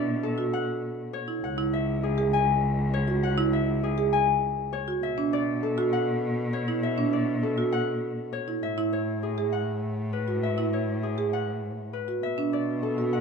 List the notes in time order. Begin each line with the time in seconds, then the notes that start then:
Already playing: B2 A4 C#5 D5 E5 F#5
0.23 A4
0.38 F#4
0.53 F#5
1.13 C#5
1.28 E4
1.43 C#2 F#5
1.58 E4
1.73 E5
2.03 G#4
2.18 G#4
2.33 G#5
2.94 C#5
3.08 F#4
3.23 F#5
3.38 E4
3.53 E5
3.83 G#4
3.98 G#4
4.13 G#5
4.73 C#5
4.88 F#4
5.03 B2 E5
5.18 D4
5.33 D5
5.63 A4
5.78 F#4
5.93 F#5
6.53 C#5
6.68 E4
6.83 E5
6.98 D4
7.13 D5
7.43 A4
7.58 F#4
7.72 F#5
8.33 C#5
8.48 E4
8.63 A2 E5
8.78 E4
8.93 C#5
9.23 G#4
9.38 G#4
9.52 F#5
10.13 B4
10.28 F#4
10.43 E5
10.58 E4
10.73 C#5
11.03 G#4
11.18 G#4
11.33 F#5
11.93 B4
12.08 F#4
12.23 B2 E5
12.38 D4
12.53 D5
12.83 A4
12.98 F#4
13.13 F#5